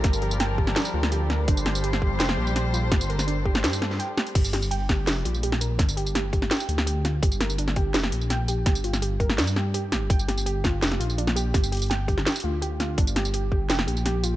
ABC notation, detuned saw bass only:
X:1
M:4/4
L:1/8
Q:1/4=167
K:Gm
V:1 name="Detuned saw bass" clef=bass
G,,,4 z D,,3 | G,,,4 F,,, B,,,3 | G,,,4 G,,2 z2 | G,,,4 F,,, B,,,3 |
G,,,4 z D,,3 | G,,,4 F,,, B,,,3 | G,,,4 G,,3 G,,, | G,,,4 F,,, B,,,3 |
G,,,4 z D,,3 | G,,,4 F,,, B,,,3 |]